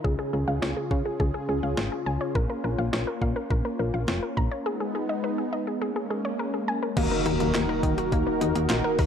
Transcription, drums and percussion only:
0.05 kick
0.62 snare
0.91 kick
1.20 kick
1.77 snare
2.35 kick
2.93 snare
3.22 kick
3.50 kick
4.08 snare
4.37 kick
6.97 kick, closed hi-hat, crash
7.26 closed hi-hat
7.40 closed hi-hat
7.55 snare, clap, closed hi-hat
7.83 kick, closed hi-hat
7.98 closed hi-hat
8.12 kick, closed hi-hat
8.41 closed hi-hat
8.55 closed hi-hat
8.70 snare, clap, closed hi-hat
8.99 kick, open hi-hat

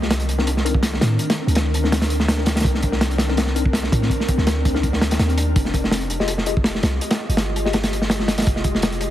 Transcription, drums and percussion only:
0.02 snare
0.11 snare, closed hi-hat
0.20 closed hi-hat
0.29 closed hi-hat
0.39 snare
0.47 closed hi-hat
0.57 snare
0.66 closed hi-hat
0.74 kick
0.83 snare, closed hi-hat
0.93 snare
1.01 snare, closed hi-hat
1.19 closed hi-hat
1.30 snare, closed hi-hat
1.48 closed hi-hat
1.55 snare, closed hi-hat
1.74 closed hi-hat
1.84 snare
1.92 snare, closed hi-hat
2.02 snare, closed hi-hat
2.10 closed hi-hat
2.20 snare
2.28 snare, closed hi-hat
2.37 snare
2.46 snare, closed hi-hat
2.56 snare, closed hi-hat
2.60 snare, closed hi-hat
2.65 kick, closed hi-hat
2.75 snare
2.83 kick, closed hi-hat
2.92 snare
3.01 snare, closed hi-hat
3.11 closed hi-hat
3.18 snare, closed hi-hat
3.28 snare
3.37 snare, closed hi-hat
3.47 snare
3.56 closed hi-hat
3.66 kick
3.73 snare, closed hi-hat
3.83 snare
3.92 kick, closed hi-hat
4.02 snare
4.10 kick, closed hi-hat
4.20 snare
4.28 kick, closed hi-hat
4.38 snare
4.47 snare, closed hi-hat
4.65 kick, closed hi-hat
4.75 snare
4.83 kick, closed hi-hat
4.93 snare
5.01 snare, closed hi-hat
5.11 snare, closed hi-hat
5.19 snare, closed hi-hat
5.29 closed hi-hat
5.38 closed hi-hat
5.56 kick, closed hi-hat
5.65 snare
5.74 kick, closed hi-hat
5.84 snare
5.91 snare, closed hi-hat
6.01 closed hi-hat
6.10 closed hi-hat
6.20 snare
6.28 closed hi-hat
6.38 snare
6.46 closed hi-hat
6.57 kick
6.64 snare, closed hi-hat
6.75 snare
6.83 snare, closed hi-hat
7.01 closed hi-hat
7.11 snare, closed hi-hat
7.30 closed hi-hat
7.37 snare, closed hi-hat
7.56 closed hi-hat
7.66 snare
7.73 snare, closed hi-hat
7.83 snare, closed hi-hat
7.93 closed hi-hat
8.02 snare
8.10 snare, closed hi-hat
8.20 snare
8.28 snare, closed hi-hat
8.38 snare, closed hi-hat
8.42 snare, closed hi-hat
8.47 kick, closed hi-hat
8.56 snare
8.64 kick, closed hi-hat
8.75 snare
8.82 snare, closed hi-hat
8.92 closed hi-hat
9.01 closed hi-hat

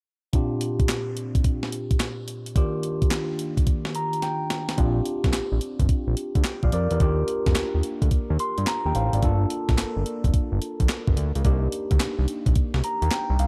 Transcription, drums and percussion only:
0.33 kick, closed hi-hat
0.61 closed hi-hat
0.80 kick, closed hi-hat
0.89 snare, clap, closed hi-hat
1.17 closed hi-hat
1.35 kick, closed hi-hat
1.44 kick, closed hi-hat
1.63 snare
1.72 closed hi-hat
1.91 kick, closed hi-hat
2.00 snare, clap, closed hi-hat
2.28 closed hi-hat
2.46 closed hi-hat
2.56 kick, closed hi-hat
2.83 closed hi-hat
3.02 kick, closed hi-hat
3.11 snare, clap, closed hi-hat
3.39 closed hi-hat
3.57 kick, closed hi-hat
3.67 kick, closed hi-hat
3.85 snare
3.95 closed hi-hat
4.13 closed hi-hat
4.22 snare, closed hi-hat
4.50 snare, closed hi-hat
4.69 snare, closed hi-hat
4.78 kick, closed hi-hat
5.05 closed hi-hat
5.24 kick, snare, closed hi-hat
5.33 snare, clap, closed hi-hat
5.61 closed hi-hat
5.79 kick, closed hi-hat
5.89 kick, closed hi-hat
6.17 closed hi-hat
6.35 kick, closed hi-hat
6.44 snare, clap, closed hi-hat
6.63 kick
6.72 closed hi-hat
6.91 closed hi-hat
7.00 kick, closed hi-hat
7.28 closed hi-hat
7.46 kick, snare, closed hi-hat
7.55 snare, clap, closed hi-hat
7.83 closed hi-hat
8.02 kick, closed hi-hat
8.11 kick, closed hi-hat
8.39 closed hi-hat
8.58 closed hi-hat
8.67 snare, clap, closed hi-hat
8.95 closed hi-hat
9.13 closed hi-hat
9.22 kick, closed hi-hat
9.50 closed hi-hat
9.69 kick, snare, closed hi-hat
9.78 snare, clap, closed hi-hat
10.06 closed hi-hat
10.24 kick, closed hi-hat
10.34 kick, closed hi-hat
10.62 closed hi-hat
10.80 kick, closed hi-hat
10.89 snare, clap, closed hi-hat
11.07 kick
11.17 closed hi-hat
11.35 closed hi-hat
11.45 kick, closed hi-hat
11.72 closed hi-hat
11.91 kick, closed hi-hat
12.00 snare, clap, closed hi-hat
12.28 closed hi-hat
12.46 kick, closed hi-hat
12.55 kick, closed hi-hat
12.74 snare
12.84 closed hi-hat
13.02 closed hi-hat
13.11 snare, clap, closed hi-hat
13.39 closed hi-hat

